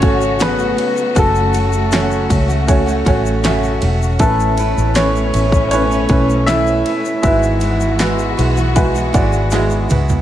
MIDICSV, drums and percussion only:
0, 0, Header, 1, 2, 480
1, 0, Start_track
1, 0, Key_signature, 3, "major"
1, 0, Tempo, 759494
1, 734, Time_signature, 4, 2, 24, 8
1, 6457, End_track
2, 0, Start_track
2, 0, Title_t, "Drums"
2, 12, Note_on_c, 9, 51, 54
2, 17, Note_on_c, 9, 36, 92
2, 76, Note_off_c, 9, 51, 0
2, 80, Note_off_c, 9, 36, 0
2, 133, Note_on_c, 9, 82, 46
2, 197, Note_off_c, 9, 82, 0
2, 249, Note_on_c, 9, 82, 64
2, 259, Note_on_c, 9, 38, 104
2, 259, Note_on_c, 9, 51, 73
2, 312, Note_off_c, 9, 82, 0
2, 322, Note_off_c, 9, 51, 0
2, 323, Note_off_c, 9, 38, 0
2, 371, Note_on_c, 9, 82, 40
2, 434, Note_off_c, 9, 82, 0
2, 495, Note_on_c, 9, 51, 64
2, 558, Note_off_c, 9, 51, 0
2, 613, Note_on_c, 9, 82, 50
2, 676, Note_off_c, 9, 82, 0
2, 735, Note_on_c, 9, 51, 71
2, 735, Note_on_c, 9, 82, 63
2, 736, Note_on_c, 9, 36, 100
2, 798, Note_off_c, 9, 51, 0
2, 798, Note_off_c, 9, 82, 0
2, 799, Note_off_c, 9, 36, 0
2, 855, Note_on_c, 9, 82, 46
2, 918, Note_off_c, 9, 82, 0
2, 971, Note_on_c, 9, 82, 45
2, 977, Note_on_c, 9, 51, 63
2, 1034, Note_off_c, 9, 82, 0
2, 1040, Note_off_c, 9, 51, 0
2, 1091, Note_on_c, 9, 82, 50
2, 1154, Note_off_c, 9, 82, 0
2, 1212, Note_on_c, 9, 82, 73
2, 1217, Note_on_c, 9, 51, 67
2, 1223, Note_on_c, 9, 38, 106
2, 1275, Note_off_c, 9, 82, 0
2, 1280, Note_off_c, 9, 51, 0
2, 1286, Note_off_c, 9, 38, 0
2, 1334, Note_on_c, 9, 82, 42
2, 1397, Note_off_c, 9, 82, 0
2, 1455, Note_on_c, 9, 36, 85
2, 1457, Note_on_c, 9, 51, 69
2, 1457, Note_on_c, 9, 82, 48
2, 1518, Note_off_c, 9, 36, 0
2, 1520, Note_off_c, 9, 51, 0
2, 1521, Note_off_c, 9, 82, 0
2, 1577, Note_on_c, 9, 82, 47
2, 1640, Note_off_c, 9, 82, 0
2, 1696, Note_on_c, 9, 51, 80
2, 1697, Note_on_c, 9, 36, 85
2, 1698, Note_on_c, 9, 82, 70
2, 1760, Note_off_c, 9, 36, 0
2, 1760, Note_off_c, 9, 51, 0
2, 1761, Note_off_c, 9, 82, 0
2, 1821, Note_on_c, 9, 82, 49
2, 1884, Note_off_c, 9, 82, 0
2, 1936, Note_on_c, 9, 36, 91
2, 1938, Note_on_c, 9, 51, 58
2, 1999, Note_off_c, 9, 36, 0
2, 2001, Note_off_c, 9, 51, 0
2, 2060, Note_on_c, 9, 82, 49
2, 2123, Note_off_c, 9, 82, 0
2, 2174, Note_on_c, 9, 82, 66
2, 2178, Note_on_c, 9, 38, 99
2, 2178, Note_on_c, 9, 51, 70
2, 2237, Note_off_c, 9, 82, 0
2, 2241, Note_off_c, 9, 38, 0
2, 2241, Note_off_c, 9, 51, 0
2, 2297, Note_on_c, 9, 82, 39
2, 2360, Note_off_c, 9, 82, 0
2, 2413, Note_on_c, 9, 51, 65
2, 2476, Note_off_c, 9, 51, 0
2, 2543, Note_on_c, 9, 82, 46
2, 2606, Note_off_c, 9, 82, 0
2, 2651, Note_on_c, 9, 51, 69
2, 2653, Note_on_c, 9, 36, 106
2, 2662, Note_on_c, 9, 82, 60
2, 2714, Note_off_c, 9, 51, 0
2, 2716, Note_off_c, 9, 36, 0
2, 2725, Note_off_c, 9, 82, 0
2, 2780, Note_on_c, 9, 82, 48
2, 2844, Note_off_c, 9, 82, 0
2, 2892, Note_on_c, 9, 51, 61
2, 2900, Note_on_c, 9, 82, 46
2, 2955, Note_off_c, 9, 51, 0
2, 2964, Note_off_c, 9, 82, 0
2, 3021, Note_on_c, 9, 82, 53
2, 3084, Note_off_c, 9, 82, 0
2, 3129, Note_on_c, 9, 51, 74
2, 3136, Note_on_c, 9, 38, 108
2, 3137, Note_on_c, 9, 82, 71
2, 3192, Note_off_c, 9, 51, 0
2, 3199, Note_off_c, 9, 38, 0
2, 3200, Note_off_c, 9, 82, 0
2, 3261, Note_on_c, 9, 82, 42
2, 3324, Note_off_c, 9, 82, 0
2, 3374, Note_on_c, 9, 51, 68
2, 3385, Note_on_c, 9, 82, 46
2, 3437, Note_off_c, 9, 51, 0
2, 3448, Note_off_c, 9, 82, 0
2, 3491, Note_on_c, 9, 36, 91
2, 3497, Note_on_c, 9, 82, 46
2, 3554, Note_off_c, 9, 36, 0
2, 3560, Note_off_c, 9, 82, 0
2, 3609, Note_on_c, 9, 51, 76
2, 3618, Note_on_c, 9, 82, 70
2, 3673, Note_off_c, 9, 51, 0
2, 3681, Note_off_c, 9, 82, 0
2, 3738, Note_on_c, 9, 82, 48
2, 3801, Note_off_c, 9, 82, 0
2, 3848, Note_on_c, 9, 51, 54
2, 3853, Note_on_c, 9, 36, 94
2, 3911, Note_off_c, 9, 51, 0
2, 3916, Note_off_c, 9, 36, 0
2, 3979, Note_on_c, 9, 82, 49
2, 4043, Note_off_c, 9, 82, 0
2, 4095, Note_on_c, 9, 38, 94
2, 4095, Note_on_c, 9, 51, 69
2, 4097, Note_on_c, 9, 82, 70
2, 4159, Note_off_c, 9, 38, 0
2, 4159, Note_off_c, 9, 51, 0
2, 4161, Note_off_c, 9, 82, 0
2, 4214, Note_on_c, 9, 82, 39
2, 4278, Note_off_c, 9, 82, 0
2, 4334, Note_on_c, 9, 51, 61
2, 4397, Note_off_c, 9, 51, 0
2, 4456, Note_on_c, 9, 82, 48
2, 4519, Note_off_c, 9, 82, 0
2, 4571, Note_on_c, 9, 51, 73
2, 4574, Note_on_c, 9, 36, 108
2, 4574, Note_on_c, 9, 82, 60
2, 4635, Note_off_c, 9, 51, 0
2, 4637, Note_off_c, 9, 36, 0
2, 4637, Note_off_c, 9, 82, 0
2, 4695, Note_on_c, 9, 82, 47
2, 4758, Note_off_c, 9, 82, 0
2, 4807, Note_on_c, 9, 82, 44
2, 4811, Note_on_c, 9, 51, 59
2, 4870, Note_off_c, 9, 82, 0
2, 4874, Note_off_c, 9, 51, 0
2, 4933, Note_on_c, 9, 82, 52
2, 4996, Note_off_c, 9, 82, 0
2, 5050, Note_on_c, 9, 51, 67
2, 5055, Note_on_c, 9, 82, 71
2, 5056, Note_on_c, 9, 38, 104
2, 5113, Note_off_c, 9, 51, 0
2, 5118, Note_off_c, 9, 82, 0
2, 5119, Note_off_c, 9, 38, 0
2, 5174, Note_on_c, 9, 82, 42
2, 5237, Note_off_c, 9, 82, 0
2, 5300, Note_on_c, 9, 82, 45
2, 5301, Note_on_c, 9, 51, 65
2, 5364, Note_off_c, 9, 51, 0
2, 5364, Note_off_c, 9, 82, 0
2, 5416, Note_on_c, 9, 82, 47
2, 5479, Note_off_c, 9, 82, 0
2, 5535, Note_on_c, 9, 51, 74
2, 5538, Note_on_c, 9, 36, 87
2, 5539, Note_on_c, 9, 82, 68
2, 5599, Note_off_c, 9, 51, 0
2, 5601, Note_off_c, 9, 36, 0
2, 5602, Note_off_c, 9, 82, 0
2, 5659, Note_on_c, 9, 82, 53
2, 5722, Note_off_c, 9, 82, 0
2, 5777, Note_on_c, 9, 51, 56
2, 5779, Note_on_c, 9, 36, 95
2, 5781, Note_on_c, 9, 82, 52
2, 5840, Note_off_c, 9, 51, 0
2, 5842, Note_off_c, 9, 36, 0
2, 5844, Note_off_c, 9, 82, 0
2, 5894, Note_on_c, 9, 82, 49
2, 5957, Note_off_c, 9, 82, 0
2, 6009, Note_on_c, 9, 82, 71
2, 6019, Note_on_c, 9, 51, 73
2, 6021, Note_on_c, 9, 38, 55
2, 6072, Note_off_c, 9, 82, 0
2, 6083, Note_off_c, 9, 51, 0
2, 6084, Note_off_c, 9, 38, 0
2, 6133, Note_on_c, 9, 82, 41
2, 6196, Note_off_c, 9, 82, 0
2, 6254, Note_on_c, 9, 82, 49
2, 6261, Note_on_c, 9, 45, 90
2, 6261, Note_on_c, 9, 51, 62
2, 6317, Note_off_c, 9, 82, 0
2, 6324, Note_off_c, 9, 51, 0
2, 6325, Note_off_c, 9, 45, 0
2, 6376, Note_on_c, 9, 82, 46
2, 6382, Note_on_c, 9, 43, 87
2, 6439, Note_off_c, 9, 82, 0
2, 6445, Note_off_c, 9, 43, 0
2, 6457, End_track
0, 0, End_of_file